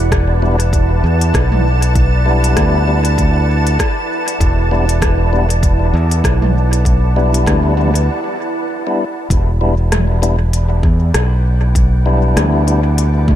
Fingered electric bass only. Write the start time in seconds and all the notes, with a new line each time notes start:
Already playing: E1
1.04 E2
1.34 B1
2.57 D2
4.40 E1
5.93 E2
6.24 B1
7.46 D2
9.30 E1
10.83 E2
11.14 B1
12.36 D2